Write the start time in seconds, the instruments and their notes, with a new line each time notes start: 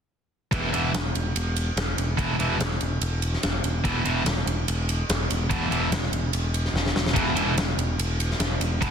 0.51 picked electric bass E1, distorted electric guitar E2 B2 E3, kick, ride
0.72 picked electric bass E1, distorted electric guitar E2 B2 E3, ride
0.94 picked electric bass E1, snare, ride
1.15 picked electric bass E1, ride
1.35 picked electric bass E1, ride
1.56 ride
1.76 picked electric bass E1, snare, ride
1.97 picked electric bass E1, ride
2.18 distorted electric guitar E2 B2 E3, kick, ride
2.39 picked electric bass E1, distorted electric guitar E2 B2 E3, ride
2.60 picked electric bass E1, snare, ride
2.71 snare
2.81 picked electric bass E1, ride
3.01 picked electric bass E1, ride
3.22 ride
3.33 snare
3.43 picked electric bass E1, snare, ride
3.63 picked electric bass E1, ride
3.84 picked electric bass E1, distorted electric guitar E2 B2 E3, kick, ride
4.05 picked electric bass E1, distorted electric guitar E2 B2 E3, ride
4.26 picked electric bass E1, snare, ride
4.37 snare
4.46 picked electric bass E1, ride
4.68 picked electric bass E1, ride
4.89 ride
5.09 picked electric bass E1, snare, ride
5.30 picked electric bass E1, ride
5.50 distorted electric guitar E2 B2 E3, kick, ride
5.70 picked electric bass E1, distorted electric guitar E2 B2 E3, ride
5.92 picked electric bass E1, snare, ride
6.03 snare
6.12 picked electric bass E1, ride
6.33 picked electric bass E1, ride
6.54 ride
6.65 snare
6.74 picked electric bass E1, snare
6.86 snare
6.94 picked electric bass E1, snare
7.06 snare
7.14 picked electric bass E1, distorted electric guitar E2 B2 E3, kick, ride
7.35 picked electric bass E1, distorted electric guitar E2 B2 E3, ride
7.56 picked electric bass E1, snare, ride
7.77 picked electric bass E1, ride
7.98 picked electric bass E1, ride
8.20 ride
8.31 snare
8.39 picked electric bass E1, snare, ride
8.60 picked electric bass E1, ride
8.81 picked electric bass E1, distorted electric guitar E2 B2 E3, kick, ride